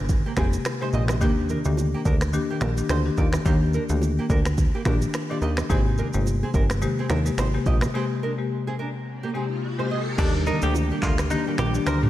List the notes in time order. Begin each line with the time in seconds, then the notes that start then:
Already playing: G1
0.09 kick, low conga, shaker
0.26 A#3 G4
0.37 F1 C3 G#3 A#3 C4 G4 G#4, finger snap, kick, cross-stick, high bongo, low bongo, shaker
0.53 shaker
0.65 finger snap, cross-stick, high bongo, shaker
0.81 C3 G#3 A#3 D#4 G4 C5
0.93 A#1 G4 D#5, shaker
1.08 finger snap, cross-stick, low bongo, shaker
1.21 D#2 D#3 A#3 D4 G4, kick, low conga, shaker
1.49 D4 A#4, low conga, shaker
1.65 D2 D#3 A#3 D4 G4, shaker
1.77 high bongo, shaker
1.94 A#3 G4
2.05 D2 D4 A#4, kick, shaker
2.21 finger snap, cross-stick, shaker
2.33 D#3 A#3 D4 G4, low conga, shaker
2.50 A#3 G4
2.61 A#1 D4 A#4, finger snap, cross-stick, high bongo, low bongo, shaker
2.77 D#3 A#3 D4 G4, shaker
2.89 D2 D#4 C5, finger snap, cross-stick, high bongo, shaker
3.05 D#3 A#3 D4 G4
3.17 D#2 F4 D5, kick, shaker
3.33 finger snap, cross-stick, low bongo, shaker
3.45 D#2 D#3 A#3 D4 G4, kick, low conga, shaker
3.73 D4 A#4, low conga, shaker
3.89 D2 D#3 A#3 D4 G4, shaker
4.02 high bongo, shaker
4.19 A#3 G4
4.30 D2 D4 A#4, kick, shaker
4.45 finger snap, cross-stick, shaker
4.58 kick, low conga, shaker
4.75 A#3 G4
4.85 A#1 D#3 A#3 D4 G4 A#4, finger snap, kick, cross-stick, high bongo, low bongo, shaker
5.02 shaker
5.14 finger snap, cross-stick, high bongo, shaker
5.30 D#3 A#3 D4 F4 G4 D5
5.42 D#2 G4 D#5, shaker
5.57 finger snap, cross-stick, low bongo, shaker
5.70 G#1 C3 G#3 A#3 C4 G4 G#4, kick, low conga, shaker
5.98 D4 A#4, low conga, shaker
6.13 G1 C3 G#3 A#3 G4, shaker
6.26 high bongo, shaker
6.43 C4 G#4
6.54 G1 D4 A#4, kick, shaker
6.70 finger snap, cross-stick, shaker
6.82 C3 G#3 A#3 G4, low conga, shaker
6.99 C4 G#4
7.10 D#2 D4 A#4, finger snap, cross-stick, high bongo, low bongo, shaker
7.26 C3 G#3 A#3 G4, shaker
7.38 G#1 D#4 C5, finger snap, cross-stick, high bongo, shaker
7.54 C3 G#3 A#3 G4
7.66 A#1 G4 D#5, kick, shaker
7.81 finger snap, cross-stick, low bongo, shaker
7.94 C3 G#3 A#3 C4 G4 G#4, riser
8.23 D4 A#4
8.38 C3 G#3 A#3 G4
8.67 C4 G#4
8.79 D4 A#4
9.23 A#3 G4
9.34 C3 G#3 A#3 C4 G4 G#4
9.78 C3 G#3 A#3 D#4 G4 C5
9.91 G4 D#5
10.18 D#2 D#3 G3 A#3 D4 G4, kick, crash, low conga, shaker
10.46 D4 D#4 A#4, low bongo, low conga, shaker
10.62 D2 D#3 A#3 D4 G4, shaker
10.75 high bongo, shaker
10.91 A#3 G4
11.02 D2 D4 F4 A#4, kick, clap, shaker
11.18 finger snap, cross-stick, shaker
11.30 D#3 A#3 D4 D#4 G4, low conga, shaker
11.48 A#3 G4
11.58 A#1 D4 G4 A#4, finger snap, cross-stick, high bongo, low bongo, shaker
11.74 D#3 A#3 D4 G4, shaker
11.87 D2 D#4 A#4 C5, finger snap, cross-stick, high bongo, shaker
12.03 D#3 A#3 D4 G4, mid tom